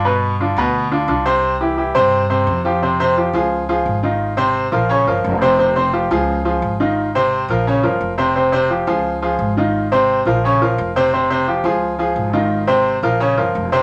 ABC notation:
X:1
M:4/4
L:1/8
Q:1/4=173
K:Fm
V:1 name="Grand piano"
[=B,,=B,=B]2 [=D,=DF] [B,,B,B]2 [D,DF] [D,DF] [C,Cc]- | [C,Cc] [=E,=EG] [E,EG] [C,Cc]2 [C,Cc]2 [F,FG] | [C,Cc] [C,Cc] [F,FG] [F,FA]2 [F,FA]2 [E,EF]- | [E,EF] [C,Cc]2 [F,FB] [D,Dd] [F,FB]2 [C,Cc] |
[C,Cc] [C,Cc] [F,FG] [F,FA]2 [F,FA]2 [E,EF]- | [E,EF] [C,Cc]2 [F,FB] [D,Dd] [F,FB]2 [C,Cc] | [C,Cc] [C,Cc] [F,FG] [F,FA]2 [F,FA]2 [E,EF]- | [E,EF] [C,Cc]2 [F,FB] [D,Dd] [F,FB]2 [C,Cc] |
[C,Cc] [C,Cc] [F,FG] [F,FA]2 [F,FA]2 [E,EF]- | [E,EF] [C,Cc]2 [F,FB] [D,Dd] [F,FB]2 [C,Cc] |]
V:2 name="Upright bass" clef=bass
G,,3 =D,,3 C,,2- | C,,3 G,,3 F,,2- | F,,3 D,,3 A,,,2- | A,,,3 B,,,2 G,,, F,,,2- |
F,,,3 D,,3 A,,,2- | A,,,3 B,,,2 G,,, F,,,2- | F,,,3 D,,3 A,,,2- | A,,,3 B,,,3 F,,,2- |
F,,,3 D,,3 A,,,2- | A,,,3 B,,,2 G,,, F,,,2 |]